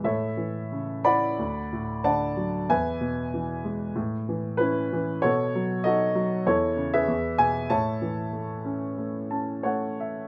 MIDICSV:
0, 0, Header, 1, 2, 480
1, 0, Start_track
1, 0, Key_signature, 3, "major"
1, 0, Tempo, 660066
1, 38, Time_signature, 4, 2, 24, 8
1, 1957, Tempo, 634921
1, 3877, Tempo, 620476
1, 6277, Tempo, 668896
1, 7673, End_track
2, 0, Start_track
2, 0, Title_t, "Grand piano"
2, 0, Program_c, 0, 0
2, 0, Control_c, 0, 64, 127
2, 27, Note_on_c, 0, 45, 58
2, 33, Note_on_c, 0, 76, 75
2, 38, Note_on_c, 0, 73, 53
2, 40, Note_on_c, 0, 69, 51
2, 47, Control_c, 0, 64, 0
2, 180, Control_c, 0, 64, 127
2, 271, Note_on_c, 0, 52, 44
2, 523, Note_on_c, 0, 49, 46
2, 737, Note_off_c, 0, 76, 0
2, 759, Note_on_c, 0, 83, 92
2, 761, Note_on_c, 0, 74, 71
2, 762, Note_on_c, 0, 78, 69
2, 771, Note_on_c, 0, 64, 50
2, 972, Note_off_c, 0, 45, 0
2, 977, Note_off_c, 0, 73, 0
2, 979, Note_off_c, 0, 52, 0
2, 979, Note_off_c, 0, 69, 0
2, 990, Note_off_c, 0, 49, 0
2, 1000, Note_off_c, 0, 64, 0
2, 1008, Note_on_c, 0, 38, 53
2, 1016, Control_c, 0, 64, 0
2, 1153, Control_c, 0, 64, 127
2, 1256, Note_on_c, 0, 45, 47
2, 1475, Note_off_c, 0, 74, 0
2, 1477, Note_off_c, 0, 78, 0
2, 1485, Note_on_c, 0, 81, 92
2, 1486, Note_on_c, 0, 74, 62
2, 1488, Note_on_c, 0, 78, 62
2, 1489, Note_on_c, 0, 50, 53
2, 1501, Note_off_c, 0, 83, 0
2, 1722, Note_on_c, 0, 54, 48
2, 1930, Note_off_c, 0, 74, 0
2, 1931, Note_off_c, 0, 38, 0
2, 1931, Note_off_c, 0, 78, 0
2, 1943, Note_off_c, 0, 45, 0
2, 1946, Note_off_c, 0, 50, 0
2, 1950, Note_off_c, 0, 54, 0
2, 1956, Note_on_c, 0, 40, 65
2, 1961, Note_on_c, 0, 76, 57
2, 1961, Note_on_c, 0, 80, 84
2, 1964, Note_on_c, 0, 71, 61
2, 1970, Control_c, 0, 64, 0
2, 1974, Note_off_c, 0, 81, 0
2, 2115, Control_c, 0, 64, 127
2, 2196, Note_on_c, 0, 47, 53
2, 2446, Note_on_c, 0, 52, 49
2, 2679, Note_on_c, 0, 56, 52
2, 2885, Note_off_c, 0, 40, 0
2, 2886, Note_off_c, 0, 76, 0
2, 2886, Note_off_c, 0, 80, 0
2, 2888, Note_off_c, 0, 71, 0
2, 2892, Note_off_c, 0, 47, 0
2, 2905, Note_off_c, 0, 52, 0
2, 2910, Note_off_c, 0, 56, 0
2, 2912, Note_on_c, 0, 45, 64
2, 2926, Control_c, 0, 64, 0
2, 3040, Control_c, 0, 64, 127
2, 3163, Note_on_c, 0, 52, 51
2, 3380, Note_on_c, 0, 71, 83
2, 3397, Note_on_c, 0, 64, 59
2, 3403, Note_on_c, 0, 61, 57
2, 3638, Note_off_c, 0, 52, 0
2, 3649, Note_on_c, 0, 52, 61
2, 3839, Note_off_c, 0, 71, 0
2, 3847, Note_off_c, 0, 45, 0
2, 3847, Note_off_c, 0, 64, 0
2, 3866, Note_off_c, 0, 61, 0
2, 3868, Note_on_c, 0, 73, 94
2, 3876, Note_off_c, 0, 52, 0
2, 3877, Note_on_c, 0, 66, 63
2, 3877, Note_on_c, 0, 69, 67
2, 3887, Control_c, 0, 64, 0
2, 3888, Note_on_c, 0, 47, 69
2, 4047, Control_c, 0, 64, 127
2, 4126, Note_on_c, 0, 54, 60
2, 4323, Note_off_c, 0, 73, 0
2, 4343, Note_off_c, 0, 69, 0
2, 4347, Note_on_c, 0, 75, 99
2, 4348, Note_off_c, 0, 66, 0
2, 4352, Note_on_c, 0, 63, 55
2, 4355, Note_on_c, 0, 69, 65
2, 4360, Note_on_c, 0, 66, 73
2, 4579, Note_off_c, 0, 54, 0
2, 4590, Note_on_c, 0, 54, 66
2, 4796, Note_off_c, 0, 75, 0
2, 4799, Note_off_c, 0, 69, 0
2, 4802, Note_off_c, 0, 66, 0
2, 4809, Note_off_c, 0, 47, 0
2, 4814, Note_off_c, 0, 63, 0
2, 4822, Note_off_c, 0, 54, 0
2, 4829, Note_on_c, 0, 40, 62
2, 4833, Note_on_c, 0, 73, 85
2, 4841, Control_c, 0, 64, 0
2, 4841, Note_on_c, 0, 64, 67
2, 4841, Note_on_c, 0, 69, 71
2, 4993, Control_c, 0, 64, 127
2, 5063, Note_on_c, 0, 49, 54
2, 5165, Note_off_c, 0, 73, 0
2, 5196, Note_on_c, 0, 76, 94
2, 5199, Note_on_c, 0, 71, 62
2, 5201, Note_on_c, 0, 68, 62
2, 5284, Note_off_c, 0, 64, 0
2, 5284, Note_off_c, 0, 69, 0
2, 5294, Note_off_c, 0, 40, 0
2, 5300, Note_off_c, 0, 49, 0
2, 5305, Note_on_c, 0, 40, 69
2, 5321, Control_c, 0, 64, 0
2, 5454, Control_c, 0, 64, 127
2, 5530, Note_off_c, 0, 76, 0
2, 5543, Note_on_c, 0, 80, 94
2, 5549, Note_on_c, 0, 47, 53
2, 5766, Note_off_c, 0, 71, 0
2, 5767, Note_off_c, 0, 68, 0
2, 5771, Note_off_c, 0, 80, 0
2, 5776, Note_off_c, 0, 40, 0
2, 5784, Note_off_c, 0, 47, 0
2, 5785, Note_on_c, 0, 81, 92
2, 5787, Note_on_c, 0, 45, 63
2, 5790, Note_on_c, 0, 73, 64
2, 5794, Note_on_c, 0, 76, 62
2, 5802, Control_c, 0, 64, 0
2, 5928, Control_c, 0, 64, 127
2, 6033, Note_on_c, 0, 52, 52
2, 6273, Note_on_c, 0, 57, 46
2, 6501, Note_on_c, 0, 61, 51
2, 6728, Note_off_c, 0, 57, 0
2, 6739, Note_on_c, 0, 57, 47
2, 6955, Note_off_c, 0, 52, 0
2, 6964, Note_off_c, 0, 81, 0
2, 6969, Note_off_c, 0, 61, 0
2, 6975, Note_on_c, 0, 81, 53
2, 6980, Note_on_c, 0, 61, 44
2, 7199, Note_off_c, 0, 73, 0
2, 7203, Note_off_c, 0, 76, 0
2, 7210, Note_off_c, 0, 57, 0
2, 7210, Note_off_c, 0, 81, 0
2, 7210, Note_on_c, 0, 73, 65
2, 7221, Note_on_c, 0, 57, 50
2, 7223, Note_on_c, 0, 78, 61
2, 7456, Note_off_c, 0, 78, 0
2, 7476, Note_on_c, 0, 76, 48
2, 7673, Note_off_c, 0, 45, 0
2, 7673, Note_off_c, 0, 57, 0
2, 7673, Note_off_c, 0, 61, 0
2, 7673, Note_off_c, 0, 73, 0
2, 7673, Note_off_c, 0, 76, 0
2, 7673, End_track
0, 0, End_of_file